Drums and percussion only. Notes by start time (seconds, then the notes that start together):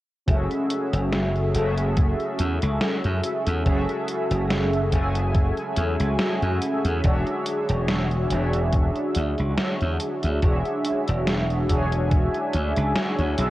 0.28 kick, closed hi-hat
0.51 closed hi-hat
0.70 closed hi-hat
0.93 closed hi-hat
1.13 snare, closed hi-hat
1.36 closed hi-hat
1.54 closed hi-hat
1.77 closed hi-hat
1.97 kick, closed hi-hat
2.20 closed hi-hat
2.39 closed hi-hat
2.62 closed hi-hat
2.81 snare, closed hi-hat
3.04 closed hi-hat
3.24 closed hi-hat
3.47 closed hi-hat
3.66 kick, closed hi-hat
3.89 closed hi-hat
4.08 closed hi-hat
4.31 closed hi-hat
4.51 snare, closed hi-hat
4.73 closed hi-hat
4.92 kick, closed hi-hat
5.15 closed hi-hat
5.35 kick, closed hi-hat
5.57 closed hi-hat
5.77 closed hi-hat
6.00 closed hi-hat
6.19 snare, closed hi-hat
6.42 closed hi-hat
6.62 closed hi-hat
6.85 closed hi-hat
7.04 kick, closed hi-hat
7.27 closed hi-hat
7.46 closed hi-hat
7.69 closed hi-hat
7.89 snare, closed hi-hat
8.11 closed hi-hat
8.31 closed hi-hat
8.54 closed hi-hat
8.73 kick, closed hi-hat
8.96 closed hi-hat
9.15 closed hi-hat
9.38 closed hi-hat
9.58 snare, closed hi-hat
9.81 closed hi-hat
10.00 closed hi-hat
10.23 closed hi-hat
10.42 kick, closed hi-hat
10.65 closed hi-hat
10.84 closed hi-hat
11.07 closed hi-hat
11.27 snare, closed hi-hat
11.50 closed hi-hat
11.69 kick, closed hi-hat
11.92 closed hi-hat
12.11 kick, closed hi-hat
12.34 closed hi-hat
12.53 closed hi-hat
12.76 closed hi-hat
12.96 snare, closed hi-hat
13.19 closed hi-hat
13.38 closed hi-hat